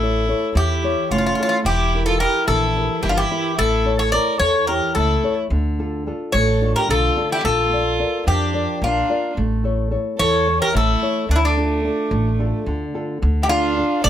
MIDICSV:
0, 0, Header, 1, 5, 480
1, 0, Start_track
1, 0, Key_signature, -1, "minor"
1, 0, Tempo, 549954
1, 1454, Time_signature, 7, 3, 24, 8
1, 12302, End_track
2, 0, Start_track
2, 0, Title_t, "Bouzouki"
2, 0, Program_c, 0, 25
2, 0, Note_on_c, 0, 69, 80
2, 460, Note_off_c, 0, 69, 0
2, 498, Note_on_c, 0, 67, 82
2, 969, Note_off_c, 0, 67, 0
2, 973, Note_on_c, 0, 65, 74
2, 1023, Note_off_c, 0, 65, 0
2, 1034, Note_on_c, 0, 65, 58
2, 1093, Note_off_c, 0, 65, 0
2, 1104, Note_on_c, 0, 65, 61
2, 1170, Note_off_c, 0, 65, 0
2, 1181, Note_on_c, 0, 65, 53
2, 1234, Note_off_c, 0, 65, 0
2, 1245, Note_on_c, 0, 65, 71
2, 1290, Note_off_c, 0, 65, 0
2, 1300, Note_on_c, 0, 65, 63
2, 1370, Note_off_c, 0, 65, 0
2, 1449, Note_on_c, 0, 67, 90
2, 1786, Note_off_c, 0, 67, 0
2, 1796, Note_on_c, 0, 69, 78
2, 1916, Note_off_c, 0, 69, 0
2, 1922, Note_on_c, 0, 70, 88
2, 2150, Note_off_c, 0, 70, 0
2, 2162, Note_on_c, 0, 69, 85
2, 2638, Note_off_c, 0, 69, 0
2, 2642, Note_on_c, 0, 67, 75
2, 2700, Note_on_c, 0, 65, 69
2, 2704, Note_off_c, 0, 67, 0
2, 2769, Note_off_c, 0, 65, 0
2, 2771, Note_on_c, 0, 67, 85
2, 3105, Note_off_c, 0, 67, 0
2, 3130, Note_on_c, 0, 69, 97
2, 3480, Note_off_c, 0, 69, 0
2, 3484, Note_on_c, 0, 73, 90
2, 3593, Note_off_c, 0, 73, 0
2, 3596, Note_on_c, 0, 74, 93
2, 3827, Note_off_c, 0, 74, 0
2, 3836, Note_on_c, 0, 73, 95
2, 4067, Note_off_c, 0, 73, 0
2, 4079, Note_on_c, 0, 70, 79
2, 4315, Note_off_c, 0, 70, 0
2, 4319, Note_on_c, 0, 69, 74
2, 4660, Note_off_c, 0, 69, 0
2, 5520, Note_on_c, 0, 73, 89
2, 5861, Note_off_c, 0, 73, 0
2, 5899, Note_on_c, 0, 70, 89
2, 6008, Note_off_c, 0, 70, 0
2, 6027, Note_on_c, 0, 69, 89
2, 6355, Note_off_c, 0, 69, 0
2, 6392, Note_on_c, 0, 67, 88
2, 6495, Note_off_c, 0, 67, 0
2, 6501, Note_on_c, 0, 69, 93
2, 7183, Note_off_c, 0, 69, 0
2, 7225, Note_on_c, 0, 67, 78
2, 7714, Note_off_c, 0, 67, 0
2, 7714, Note_on_c, 0, 65, 68
2, 8152, Note_off_c, 0, 65, 0
2, 8898, Note_on_c, 0, 73, 93
2, 9232, Note_off_c, 0, 73, 0
2, 9267, Note_on_c, 0, 70, 88
2, 9385, Note_off_c, 0, 70, 0
2, 9396, Note_on_c, 0, 69, 84
2, 9834, Note_off_c, 0, 69, 0
2, 9872, Note_on_c, 0, 62, 80
2, 9912, Note_on_c, 0, 64, 68
2, 9922, Note_off_c, 0, 62, 0
2, 9977, Note_off_c, 0, 64, 0
2, 9993, Note_on_c, 0, 62, 80
2, 11029, Note_off_c, 0, 62, 0
2, 11724, Note_on_c, 0, 67, 69
2, 11774, Note_off_c, 0, 67, 0
2, 11777, Note_on_c, 0, 65, 85
2, 12224, Note_off_c, 0, 65, 0
2, 12254, Note_on_c, 0, 74, 96
2, 12302, Note_off_c, 0, 74, 0
2, 12302, End_track
3, 0, Start_track
3, 0, Title_t, "Nylon-string guitar"
3, 0, Program_c, 1, 24
3, 0, Note_on_c, 1, 57, 60
3, 22, Note_on_c, 1, 64, 47
3, 24, Note_on_c, 1, 69, 40
3, 27, Note_on_c, 1, 73, 50
3, 238, Note_off_c, 1, 64, 0
3, 241, Note_off_c, 1, 69, 0
3, 243, Note_off_c, 1, 73, 0
3, 244, Note_off_c, 1, 57, 0
3, 248, Note_on_c, 1, 64, 43
3, 253, Note_on_c, 1, 69, 40
3, 254, Note_on_c, 1, 73, 45
3, 488, Note_on_c, 1, 52, 66
3, 635, Note_off_c, 1, 64, 0
3, 637, Note_off_c, 1, 69, 0
3, 638, Note_off_c, 1, 73, 0
3, 725, Note_on_c, 1, 64, 44
3, 733, Note_on_c, 1, 69, 41
3, 737, Note_on_c, 1, 73, 53
3, 956, Note_off_c, 1, 52, 0
3, 976, Note_on_c, 1, 57, 65
3, 1113, Note_off_c, 1, 64, 0
3, 1118, Note_off_c, 1, 69, 0
3, 1118, Note_off_c, 1, 73, 0
3, 1215, Note_on_c, 1, 64, 49
3, 1221, Note_on_c, 1, 69, 46
3, 1222, Note_on_c, 1, 73, 53
3, 1407, Note_off_c, 1, 64, 0
3, 1409, Note_off_c, 1, 69, 0
3, 1411, Note_off_c, 1, 73, 0
3, 1440, Note_off_c, 1, 57, 0
3, 1454, Note_on_c, 1, 52, 69
3, 1698, Note_on_c, 1, 64, 47
3, 1701, Note_on_c, 1, 67, 45
3, 1703, Note_on_c, 1, 70, 49
3, 1919, Note_off_c, 1, 52, 0
3, 1922, Note_off_c, 1, 64, 0
3, 1923, Note_off_c, 1, 67, 0
3, 1929, Note_off_c, 1, 70, 0
3, 1932, Note_on_c, 1, 67, 42
3, 1934, Note_on_c, 1, 64, 45
3, 1939, Note_on_c, 1, 70, 48
3, 2171, Note_on_c, 1, 52, 64
3, 2317, Note_off_c, 1, 64, 0
3, 2317, Note_off_c, 1, 67, 0
3, 2321, Note_off_c, 1, 70, 0
3, 2413, Note_on_c, 1, 64, 47
3, 2419, Note_on_c, 1, 67, 43
3, 2425, Note_on_c, 1, 70, 51
3, 2637, Note_off_c, 1, 52, 0
3, 2647, Note_on_c, 1, 52, 69
3, 2797, Note_off_c, 1, 64, 0
3, 2801, Note_off_c, 1, 67, 0
3, 2803, Note_off_c, 1, 70, 0
3, 2892, Note_on_c, 1, 64, 51
3, 2892, Note_on_c, 1, 67, 47
3, 2896, Note_on_c, 1, 70, 53
3, 3083, Note_off_c, 1, 64, 0
3, 3084, Note_off_c, 1, 67, 0
3, 3087, Note_off_c, 1, 70, 0
3, 3115, Note_off_c, 1, 52, 0
3, 3129, Note_on_c, 1, 57, 65
3, 3361, Note_on_c, 1, 64, 48
3, 3367, Note_on_c, 1, 69, 41
3, 3370, Note_on_c, 1, 73, 52
3, 3594, Note_off_c, 1, 64, 0
3, 3595, Note_off_c, 1, 69, 0
3, 3596, Note_off_c, 1, 57, 0
3, 3602, Note_off_c, 1, 73, 0
3, 3602, Note_on_c, 1, 64, 43
3, 3609, Note_on_c, 1, 69, 40
3, 3612, Note_on_c, 1, 73, 45
3, 3850, Note_on_c, 1, 52, 60
3, 3992, Note_off_c, 1, 64, 0
3, 3992, Note_off_c, 1, 69, 0
3, 3996, Note_off_c, 1, 73, 0
3, 4087, Note_on_c, 1, 64, 45
3, 4090, Note_on_c, 1, 69, 41
3, 4094, Note_on_c, 1, 73, 53
3, 4317, Note_off_c, 1, 52, 0
3, 4331, Note_on_c, 1, 57, 60
3, 4474, Note_off_c, 1, 64, 0
3, 4475, Note_off_c, 1, 69, 0
3, 4477, Note_off_c, 1, 73, 0
3, 4567, Note_on_c, 1, 64, 47
3, 4570, Note_on_c, 1, 69, 42
3, 4576, Note_on_c, 1, 73, 53
3, 4761, Note_off_c, 1, 64, 0
3, 4763, Note_off_c, 1, 69, 0
3, 4765, Note_off_c, 1, 73, 0
3, 4797, Note_off_c, 1, 57, 0
3, 4817, Note_on_c, 1, 50, 69
3, 5052, Note_on_c, 1, 62, 45
3, 5056, Note_on_c, 1, 65, 43
3, 5061, Note_on_c, 1, 69, 49
3, 5280, Note_off_c, 1, 50, 0
3, 5284, Note_off_c, 1, 62, 0
3, 5288, Note_off_c, 1, 65, 0
3, 5293, Note_off_c, 1, 69, 0
3, 5294, Note_on_c, 1, 62, 45
3, 5299, Note_on_c, 1, 65, 39
3, 5303, Note_on_c, 1, 69, 51
3, 5536, Note_on_c, 1, 57, 64
3, 5678, Note_off_c, 1, 62, 0
3, 5680, Note_off_c, 1, 65, 0
3, 5683, Note_off_c, 1, 69, 0
3, 5774, Note_on_c, 1, 62, 46
3, 5778, Note_on_c, 1, 65, 44
3, 5783, Note_on_c, 1, 69, 47
3, 6000, Note_off_c, 1, 57, 0
3, 6015, Note_on_c, 1, 50, 70
3, 6158, Note_off_c, 1, 62, 0
3, 6160, Note_off_c, 1, 65, 0
3, 6163, Note_off_c, 1, 69, 0
3, 6254, Note_on_c, 1, 62, 48
3, 6258, Note_on_c, 1, 65, 46
3, 6264, Note_on_c, 1, 69, 52
3, 6446, Note_off_c, 1, 62, 0
3, 6449, Note_off_c, 1, 65, 0
3, 6450, Note_off_c, 1, 69, 0
3, 6480, Note_off_c, 1, 50, 0
3, 6497, Note_on_c, 1, 58, 64
3, 6735, Note_off_c, 1, 58, 0
3, 6742, Note_on_c, 1, 65, 44
3, 6744, Note_on_c, 1, 58, 39
3, 6750, Note_on_c, 1, 74, 47
3, 6968, Note_off_c, 1, 65, 0
3, 6969, Note_off_c, 1, 74, 0
3, 6977, Note_on_c, 1, 65, 44
3, 6980, Note_on_c, 1, 70, 41
3, 6983, Note_on_c, 1, 74, 49
3, 7125, Note_off_c, 1, 58, 0
3, 7213, Note_on_c, 1, 53, 64
3, 7361, Note_off_c, 1, 65, 0
3, 7361, Note_off_c, 1, 70, 0
3, 7362, Note_off_c, 1, 74, 0
3, 7446, Note_on_c, 1, 65, 46
3, 7452, Note_on_c, 1, 70, 43
3, 7456, Note_on_c, 1, 74, 53
3, 7680, Note_off_c, 1, 53, 0
3, 7696, Note_on_c, 1, 58, 64
3, 7834, Note_off_c, 1, 65, 0
3, 7837, Note_off_c, 1, 70, 0
3, 7839, Note_off_c, 1, 74, 0
3, 7937, Note_on_c, 1, 65, 50
3, 7941, Note_on_c, 1, 70, 45
3, 7942, Note_on_c, 1, 74, 57
3, 8129, Note_off_c, 1, 65, 0
3, 8129, Note_off_c, 1, 70, 0
3, 8131, Note_off_c, 1, 74, 0
3, 8161, Note_off_c, 1, 58, 0
3, 8182, Note_on_c, 1, 57, 71
3, 8410, Note_on_c, 1, 64, 45
3, 8417, Note_on_c, 1, 69, 41
3, 8421, Note_on_c, 1, 73, 48
3, 8637, Note_off_c, 1, 64, 0
3, 8642, Note_off_c, 1, 69, 0
3, 8645, Note_off_c, 1, 57, 0
3, 8645, Note_off_c, 1, 73, 0
3, 8647, Note_on_c, 1, 64, 45
3, 8651, Note_on_c, 1, 69, 41
3, 8657, Note_on_c, 1, 73, 49
3, 8899, Note_on_c, 1, 52, 61
3, 9035, Note_off_c, 1, 64, 0
3, 9038, Note_off_c, 1, 69, 0
3, 9040, Note_off_c, 1, 73, 0
3, 9135, Note_on_c, 1, 64, 43
3, 9139, Note_on_c, 1, 69, 44
3, 9147, Note_on_c, 1, 73, 50
3, 9364, Note_off_c, 1, 52, 0
3, 9377, Note_on_c, 1, 57, 64
3, 9520, Note_off_c, 1, 64, 0
3, 9523, Note_off_c, 1, 69, 0
3, 9525, Note_off_c, 1, 73, 0
3, 9620, Note_on_c, 1, 64, 45
3, 9621, Note_on_c, 1, 69, 44
3, 9624, Note_on_c, 1, 73, 53
3, 9811, Note_off_c, 1, 64, 0
3, 9811, Note_off_c, 1, 69, 0
3, 9814, Note_off_c, 1, 73, 0
3, 9843, Note_off_c, 1, 57, 0
3, 9861, Note_on_c, 1, 50, 63
3, 10098, Note_on_c, 1, 62, 46
3, 10104, Note_on_c, 1, 65, 42
3, 10108, Note_on_c, 1, 69, 51
3, 10325, Note_off_c, 1, 50, 0
3, 10326, Note_off_c, 1, 62, 0
3, 10329, Note_off_c, 1, 65, 0
3, 10335, Note_off_c, 1, 69, 0
3, 10336, Note_on_c, 1, 62, 44
3, 10341, Note_on_c, 1, 65, 39
3, 10345, Note_on_c, 1, 69, 48
3, 10576, Note_on_c, 1, 57, 62
3, 10721, Note_off_c, 1, 62, 0
3, 10723, Note_off_c, 1, 65, 0
3, 10726, Note_off_c, 1, 69, 0
3, 10815, Note_on_c, 1, 62, 47
3, 10820, Note_on_c, 1, 65, 44
3, 10824, Note_on_c, 1, 69, 51
3, 11043, Note_off_c, 1, 57, 0
3, 11060, Note_on_c, 1, 50, 69
3, 11202, Note_off_c, 1, 62, 0
3, 11203, Note_off_c, 1, 65, 0
3, 11203, Note_off_c, 1, 69, 0
3, 11296, Note_on_c, 1, 62, 44
3, 11297, Note_on_c, 1, 65, 45
3, 11303, Note_on_c, 1, 69, 52
3, 11489, Note_off_c, 1, 62, 0
3, 11489, Note_off_c, 1, 65, 0
3, 11493, Note_off_c, 1, 69, 0
3, 11525, Note_off_c, 1, 50, 0
3, 11538, Note_on_c, 1, 50, 66
3, 11771, Note_on_c, 1, 62, 47
3, 11778, Note_on_c, 1, 65, 44
3, 11783, Note_on_c, 1, 69, 52
3, 12004, Note_off_c, 1, 50, 0
3, 12011, Note_off_c, 1, 62, 0
3, 12014, Note_off_c, 1, 65, 0
3, 12018, Note_off_c, 1, 69, 0
3, 12020, Note_on_c, 1, 62, 43
3, 12026, Note_on_c, 1, 65, 41
3, 12028, Note_on_c, 1, 69, 48
3, 12263, Note_on_c, 1, 57, 63
3, 12302, Note_off_c, 1, 57, 0
3, 12302, Note_off_c, 1, 62, 0
3, 12302, Note_off_c, 1, 65, 0
3, 12302, Note_off_c, 1, 69, 0
3, 12302, End_track
4, 0, Start_track
4, 0, Title_t, "Violin"
4, 0, Program_c, 2, 40
4, 0, Note_on_c, 2, 64, 69
4, 458, Note_off_c, 2, 64, 0
4, 493, Note_on_c, 2, 64, 71
4, 939, Note_off_c, 2, 64, 0
4, 971, Note_on_c, 2, 61, 72
4, 1419, Note_off_c, 2, 61, 0
4, 1455, Note_on_c, 2, 64, 78
4, 1789, Note_off_c, 2, 64, 0
4, 1816, Note_on_c, 2, 65, 69
4, 1921, Note_off_c, 2, 65, 0
4, 1927, Note_on_c, 2, 67, 75
4, 2153, Note_off_c, 2, 67, 0
4, 2164, Note_on_c, 2, 64, 77
4, 2614, Note_off_c, 2, 64, 0
4, 2652, Note_on_c, 2, 64, 73
4, 2702, Note_off_c, 2, 64, 0
4, 2707, Note_on_c, 2, 62, 61
4, 2768, Note_off_c, 2, 62, 0
4, 2775, Note_on_c, 2, 64, 77
4, 3107, Note_off_c, 2, 64, 0
4, 3122, Note_on_c, 2, 64, 76
4, 3462, Note_off_c, 2, 64, 0
4, 3479, Note_on_c, 2, 69, 69
4, 3597, Note_off_c, 2, 69, 0
4, 3610, Note_on_c, 2, 70, 75
4, 3834, Note_off_c, 2, 70, 0
4, 3847, Note_on_c, 2, 69, 75
4, 4073, Note_off_c, 2, 69, 0
4, 4097, Note_on_c, 2, 67, 69
4, 4318, Note_off_c, 2, 67, 0
4, 4345, Note_on_c, 2, 64, 67
4, 4674, Note_off_c, 2, 64, 0
4, 5542, Note_on_c, 2, 69, 85
4, 5873, Note_off_c, 2, 69, 0
4, 5911, Note_on_c, 2, 67, 70
4, 6014, Note_off_c, 2, 67, 0
4, 6036, Note_on_c, 2, 65, 76
4, 6360, Note_off_c, 2, 65, 0
4, 6390, Note_on_c, 2, 64, 68
4, 6494, Note_off_c, 2, 64, 0
4, 6521, Note_on_c, 2, 65, 80
4, 7193, Note_off_c, 2, 65, 0
4, 7223, Note_on_c, 2, 62, 72
4, 7666, Note_off_c, 2, 62, 0
4, 7721, Note_on_c, 2, 62, 65
4, 8156, Note_off_c, 2, 62, 0
4, 8896, Note_on_c, 2, 69, 87
4, 9231, Note_off_c, 2, 69, 0
4, 9262, Note_on_c, 2, 67, 72
4, 9371, Note_off_c, 2, 67, 0
4, 9384, Note_on_c, 2, 64, 83
4, 9827, Note_off_c, 2, 64, 0
4, 9865, Note_on_c, 2, 57, 65
4, 9919, Note_off_c, 2, 57, 0
4, 9923, Note_on_c, 2, 61, 55
4, 9978, Note_off_c, 2, 61, 0
4, 9997, Note_on_c, 2, 57, 73
4, 11032, Note_off_c, 2, 57, 0
4, 11719, Note_on_c, 2, 64, 60
4, 11775, Note_off_c, 2, 64, 0
4, 11780, Note_on_c, 2, 62, 78
4, 12226, Note_off_c, 2, 62, 0
4, 12263, Note_on_c, 2, 69, 92
4, 12302, Note_off_c, 2, 69, 0
4, 12302, End_track
5, 0, Start_track
5, 0, Title_t, "Upright bass"
5, 0, Program_c, 3, 32
5, 0, Note_on_c, 3, 33, 77
5, 275, Note_off_c, 3, 33, 0
5, 482, Note_on_c, 3, 40, 91
5, 822, Note_off_c, 3, 40, 0
5, 968, Note_on_c, 3, 29, 85
5, 1138, Note_off_c, 3, 29, 0
5, 1440, Note_on_c, 3, 28, 80
5, 1948, Note_off_c, 3, 28, 0
5, 2160, Note_on_c, 3, 34, 88
5, 2501, Note_off_c, 3, 34, 0
5, 2639, Note_on_c, 3, 31, 78
5, 2812, Note_off_c, 3, 31, 0
5, 3127, Note_on_c, 3, 33, 82
5, 3633, Note_off_c, 3, 33, 0
5, 3839, Note_on_c, 3, 40, 89
5, 4180, Note_off_c, 3, 40, 0
5, 4327, Note_on_c, 3, 37, 79
5, 4497, Note_off_c, 3, 37, 0
5, 4803, Note_on_c, 3, 38, 85
5, 5311, Note_off_c, 3, 38, 0
5, 5531, Note_on_c, 3, 33, 85
5, 5868, Note_off_c, 3, 33, 0
5, 6013, Note_on_c, 3, 35, 81
5, 6181, Note_off_c, 3, 35, 0
5, 6497, Note_on_c, 3, 34, 76
5, 7000, Note_off_c, 3, 34, 0
5, 7218, Note_on_c, 3, 41, 90
5, 7553, Note_off_c, 3, 41, 0
5, 7694, Note_on_c, 3, 34, 81
5, 7863, Note_off_c, 3, 34, 0
5, 8180, Note_on_c, 3, 33, 83
5, 8683, Note_off_c, 3, 33, 0
5, 8900, Note_on_c, 3, 40, 85
5, 9235, Note_off_c, 3, 40, 0
5, 9379, Note_on_c, 3, 33, 82
5, 9546, Note_off_c, 3, 33, 0
5, 9854, Note_on_c, 3, 38, 75
5, 10360, Note_off_c, 3, 38, 0
5, 10569, Note_on_c, 3, 33, 86
5, 10909, Note_off_c, 3, 33, 0
5, 11053, Note_on_c, 3, 38, 80
5, 11223, Note_off_c, 3, 38, 0
5, 11542, Note_on_c, 3, 38, 93
5, 12045, Note_off_c, 3, 38, 0
5, 12256, Note_on_c, 3, 33, 91
5, 12302, Note_off_c, 3, 33, 0
5, 12302, End_track
0, 0, End_of_file